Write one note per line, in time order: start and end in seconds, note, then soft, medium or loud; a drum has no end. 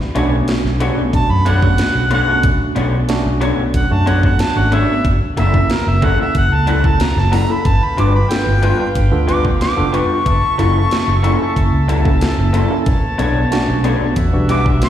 0.01 snare soft
0.15 0.40 B1 medium
0.15 0.76 A3 medium
0.15 0.35 B3 medium
0.15 0.76 C#4 medium
0.15 0.35 D4 loud
0.15 0.76 D4 medium
0.15 0.76 F#4 loud
0.15 0.36 A4 medium
0.15 0.36 C#5 medium
0.15 closed hi-hat medium
0.48 snare loud
0.48 closed hi-hat medium
0.64 0.89 B1 medium
0.64 snare soft
0.80 1.56 A3 medium
0.80 1.00 B3 medium
0.80 1.56 C#4 medium
0.80 1.01 D4 medium
0.80 1.57 D4 medium
0.80 1.57 F#4 medium
0.80 1.01 A4 medium
0.80 1.01 C#5 medium
0.80 closed hi-hat medium
0.97 muted fingered electric bass stroke soft
1.13 1.26 B1 medium
1.13 1.33 A5 loud
1.13 kick medium
1.13 closed hi-hat medium
1.30 1.79 F#2 medium
1.30 1.50 B5 medium
1.45 1.66 B3 medium
1.45 1.66 D4 medium
1.45 1.66 A4 medium
1.45 1.66 C#5 medium
1.45 2.11 F#5 loud
1.45 closed hi-hat medium
1.62 2.23 A3 medium
1.62 2.23 C#4 medium
1.62 2.23 D4 medium
1.62 2.23 F#4 medium
1.62 kick medium
1.78 snare loud
1.78 closed hi-hat medium
1.95 2.20 B1 medium
2.10 2.31 B3 medium
2.10 2.31 D4 medium
2.10 2.31 A4 medium
2.10 2.31 C#5 medium
2.10 2.44 F#5 loud
2.10 closed hi-hat medium
2.28 3.03 A3 medium
2.28 3.03 C#4 medium
2.28 3.03 D4 medium
2.28 3.03 F#4 medium
2.43 2.56 B1 medium
2.43 kick loud
2.43 closed hi-hat medium
2.61 muted fingered electric bass stroke soft
2.76 3.01 B1 loud
2.76 2.96 B3 loud
2.76 2.96 D4 medium
2.76 2.96 A4 medium
2.76 2.97 C#5 loud
2.76 closed hi-hat medium
3.08 3.84 A3 medium
3.08 3.84 C#4 medium
3.08 3.85 D4 medium
3.08 3.85 F#4 loud
3.08 snare loud
3.08 closed hi-hat medium
3.26 3.50 B1 medium
3.41 3.61 B3 medium
3.41 3.61 D4 medium
3.41 3.61 A4 medium
3.41 3.62 C#5 medium
3.41 closed hi-hat medium
3.58 muted fingered electric bass stroke soft
3.74 3.87 B1 medium
3.74 3.94 F#5 medium
3.74 kick medium
3.74 closed hi-hat medium
3.91 4.40 F#2 medium
3.91 4.51 A3 medium
3.91 4.51 C#4 medium
3.91 4.51 D4 medium
3.91 4.51 F#4 medium
3.91 4.10 A5 loud
4.06 4.26 B3 medium
4.06 4.26 D4 medium
4.06 4.27 A4 medium
4.06 4.27 C#5 medium
4.06 4.23 F#5 medium
4.06 closed hi-hat medium
4.23 4.42 F#5 medium
4.23 kick medium
4.39 4.59 A5 medium
4.39 snare loud
4.39 closed hi-hat medium
4.56 4.81 G#1 medium
4.56 5.05 A3 medium
4.56 5.05 C#4 medium
4.56 5.05 D4 medium
4.56 5.05 F#4 medium
4.56 4.76 F#5 loud
4.72 4.92 B3 medium
4.72 4.92 D4 medium
4.72 4.92 A4 medium
4.72 4.92 C#5 medium
4.72 5.05 E5 loud
4.72 closed hi-hat medium
5.05 5.17 F#1 medium
5.05 kick loud
5.05 closed hi-hat medium
5.22 muted fingered electric bass stroke soft
5.37 5.62 F#1 loud
5.37 5.57 F#3 medium
5.37 5.97 A#3 medium
5.37 5.57 A#3 medium
5.37 5.98 C#4 medium
5.37 5.98 E4 medium
5.37 5.57 E4 medium
5.37 5.98 A4 medium
5.37 5.58 A4 medium
5.37 5.74 E5 medium
5.37 closed hi-hat medium
5.54 kick medium
5.70 5.90 A#4 medium
5.70 snare loud
5.70 closed hi-hat medium
5.86 6.11 F#1 medium
5.86 6.07 E5 medium
6.02 6.22 F#3 medium
6.02 6.78 A#3 medium
6.02 6.22 A#3 medium
6.02 6.78 C#4 medium
6.02 6.78 E4 medium
6.02 6.22 E4 medium
6.02 6.78 A4 medium
6.02 6.23 A4 medium
6.02 6.19 F#5 medium
6.02 kick medium
6.02 closed hi-hat medium
6.19 6.35 E5 medium
6.19 muted fingered electric bass stroke soft
6.35 6.47 F#1 medium
6.35 6.55 F#5 medium
6.35 kick medium
6.35 closed hi-hat medium
6.52 7.01 C#2 medium
6.52 6.71 A5 loud
6.67 6.87 F#3 medium
6.67 6.87 A#3 medium
6.67 6.87 E4 medium
6.67 6.88 A4 medium
6.67 6.88 F#5 medium
6.67 closed hi-hat medium
6.84 7.44 A#3 medium
6.84 7.44 C#4 medium
6.84 7.44 E4 medium
6.84 7.45 A4 medium
6.84 7.04 A5 medium
6.84 kick medium
7.00 7.21 A#5 medium
7.00 snare loud
7.00 closed hi-hat medium
7.16 7.41 F#1 medium
7.16 7.36 A5 medium
7.16 snare soft
7.32 7.52 F#3 medium
7.32 7.52 A#3 medium
7.32 7.52 E4 medium
7.32 7.53 A4 medium
7.32 7.53 A#5 medium
7.32 open hi-hat medium
7.49 7.65 A#3 medium
7.49 7.65 C#4 medium
7.49 7.65 E4 medium
7.49 7.66 A4 medium
7.49 7.69 B5 loud
7.64 7.78 G1 medium
7.64 10.23 B4 medium
7.64 10.23 F5 medium
7.64 10.23 G5 medium
7.64 7.86 A5 loud
7.64 kick loud
7.64 closed hi-hat medium
7.82 7.98 B5 medium
7.82 muted fingered electric bass stroke soft
7.97 8.22 G1 loud
7.97 8.17 G3 medium
7.97 8.18 D4 medium
7.97 8.18 F4 medium
7.97 8.18 B4 medium
7.97 8.14 D6 medium
7.97 closed hi-hat medium
8.15 8.33 B5 medium
8.30 9.06 B3 medium
8.30 9.06 D4 medium
8.30 9.06 F4 medium
8.30 9.06 A4 medium
8.30 8.94 G5 loud
8.30 snare loud
8.30 closed hi-hat medium
8.47 8.71 G1 medium
8.62 8.82 G3 medium
8.62 8.83 D4 medium
8.62 8.83 F4 medium
8.62 8.83 B4 medium
8.62 closed hi-hat medium
8.79 muted fingered electric bass stroke soft
8.95 9.08 G1 medium
8.95 kick medium
8.95 closed hi-hat medium
9.11 9.61 D2 medium
9.11 9.72 B3 medium
9.11 9.72 D4 medium
9.11 9.72 F4 medium
9.11 9.72 A4 medium
9.27 9.47 G3 medium
9.27 9.48 D4 medium
9.27 9.48 F4 medium
9.27 9.48 B4 medium
9.27 9.44 D6 loud
9.27 closed hi-hat medium
9.45 kick medium
9.61 9.97 D6 loud
9.61 snare loud
9.61 closed hi-hat medium
9.77 10.02 F1 medium
9.77 10.25 B3 medium
9.77 10.26 D4 medium
9.77 10.26 F4 medium
9.77 10.26 A4 medium
9.93 10.13 G3 medium
9.93 10.13 D4 medium
9.93 10.13 F4 medium
9.93 10.13 B4 medium
9.93 11.86 C#6 loud
9.93 closed hi-hat medium
10.25 10.38 F#1 medium
10.25 12.84 E5 medium
10.25 14.13 A5 medium
10.25 kick loud
10.25 closed hi-hat medium
10.43 muted fingered electric bass stroke soft
10.58 10.83 F#1 loud
10.58 10.78 F#3 medium
10.58 11.19 A#3 medium
10.58 10.78 A#3 medium
10.58 11.19 C#4 medium
10.58 11.19 E4 medium
10.58 10.78 E4 medium
10.58 11.19 A4 medium
10.58 10.79 A4 medium
10.58 closed hi-hat medium
10.91 snare loud
10.91 closed hi-hat medium
11.08 11.32 F#1 medium
11.23 11.43 F#3 medium
11.23 11.43 A#3 medium
11.23 11.99 A#3 medium
11.23 11.99 C#4 medium
11.23 11.43 E4 medium
11.23 11.99 E4 medium
11.23 11.44 A4 medium
11.23 11.99 A4 loud
11.23 closed hi-hat medium
11.56 11.69 F#1 medium
11.56 kick medium
11.56 closed hi-hat medium
11.73 12.22 C#2 medium
11.88 12.08 F#3 medium
11.88 12.08 A#3 medium
11.88 12.08 E4 medium
11.88 12.09 A4 loud
11.88 closed hi-hat medium
12.05 12.65 A#3 medium
12.05 12.66 C#4 medium
12.05 12.66 E4 medium
12.05 12.66 A4 medium
12.05 kick medium
12.21 snare loud
12.21 closed hi-hat medium
12.38 12.63 F#1 medium
12.53 12.73 F#3 medium
12.53 12.73 A#3 medium
12.53 12.74 E4 loud
12.53 12.74 A4 medium
12.53 closed hi-hat medium
12.70 12.86 A#3 loud
12.70 12.86 C#4 medium
12.70 12.87 E4 medium
12.70 12.87 A4 loud
12.86 12.99 B1 loud
12.86 14.89 B4 medium
12.86 14.16 C#5 medium
12.86 kick loud
12.86 closed hi-hat medium
13.03 muted fingered electric bass stroke soft
13.18 13.44 B1 loud
13.18 13.38 B3 medium
13.18 13.39 D4 loud
13.18 13.39 A4 medium
13.18 13.39 C#5 loud
13.18 closed hi-hat medium
13.51 14.16 A3 loud
13.51 14.17 C#4 medium
13.51 14.17 D4 medium
13.51 14.17 F#4 loud
13.51 snare loud
13.51 closed hi-hat medium
13.68 13.93 B1 medium
13.84 14.04 B3 medium
13.84 14.04 D4 medium
13.84 14.04 A4 medium
13.84 14.04 C#5 medium
13.84 closed hi-hat medium
14.01 muted fingered electric bass stroke soft
14.16 14.29 E2 medium
14.16 14.89 E5 medium
14.16 14.89 F#5 medium
14.16 kick medium
14.16 closed hi-hat medium
14.33 14.82 B1 medium
14.33 14.89 G3 medium
14.33 14.89 B3 medium
14.33 14.89 D4 medium
14.33 14.89 F#4 medium
14.49 14.69 E3 medium
14.49 14.69 G3 medium
14.49 14.69 D4 medium
14.49 14.70 F#4 medium
14.49 14.65 D6 loud
14.49 closed hi-hat medium
14.66 kick medium
14.82 14.89 D6 loud
14.82 snare loud
14.82 closed hi-hat medium